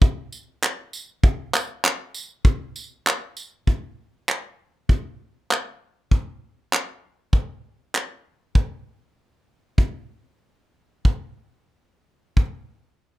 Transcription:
0.02 kick loud
0.32 tambourine medium
0.63 clap loud
0.93 tambourine medium
1.24 kick loud
1.54 clap loud
1.54 tambourine medium
1.84 clap loud
2.14 tambourine medium
2.45 kick loud
2.76 tambourine medium
3.07 clap loud
3.37 tambourine medium
3.67 kick medium
4.29 clap medium
4.89 kick medium
5.51 clap medium
6.11 kick medium
6.73 clap medium
7.33 kick medium
7.95 clap medium
8.55 kick loud
9.78 kick medium
11.05 kick medium
12.37 kick medium

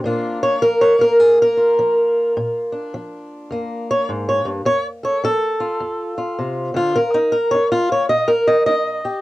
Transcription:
0.04 0.58 A#2 medium
0.04 0.98 A#3 medium
0.04 0.62 D4 soft
0.04 0.42 F4 soft
0.43 0.62 C#5 loud
0.62 1.16 F3 medium
0.62 0.82 A#4 loud
0.81 1.01 C#5 medium
0.99 3.51 A#3 soft
0.99 1.19 A#4 medium
1.19 1.74 F2 medium
1.19 1.39 G#4 loud
1.42 2.57 A#4 loud
1.57 3.90 F4 medium
1.79 2.32 F3 medium
2.37 2.90 A#2 medium
2.72 4.67 D4 soft
2.94 3.48 F3 medium
3.51 4.05 F2 medium
3.51 4.67 A#3 soft
3.91 4.10 C#5 medium
4.09 4.45 G#2 medium
4.29 4.48 C#5 medium
4.45 4.65 G2 medium
4.65 5.20 F2 medium
4.65 4.86 C#5 loud
5.03 5.23 A4 soft
5.03 5.24 C#5 medium
5.24 5.77 F3 medium
5.24 6.39 A4 loud
5.60 6.16 F4 soft
5.80 6.34 F2 medium
6.18 6.75 F4 soft
6.38 6.74 C3 medium
6.74 6.96 D3 medium
6.74 6.96 F4 medium
6.95 7.49 D#3 medium
6.95 7.15 A#4 medium
7.14 7.34 D#4 medium
7.32 7.53 A#4 medium
7.51 8.07 D#4 medium
7.51 7.71 C#5 loud
7.72 7.92 F4 loud
7.92 8.09 C#5 medium
8.09 8.64 A#2 medium
8.09 8.29 D#5 loud
8.28 8.48 A#4 medium
8.48 8.65 D#5 medium
8.66 9.21 D#4 medium
8.66 9.21 D#5 loud
9.05 9.21 G4 soft

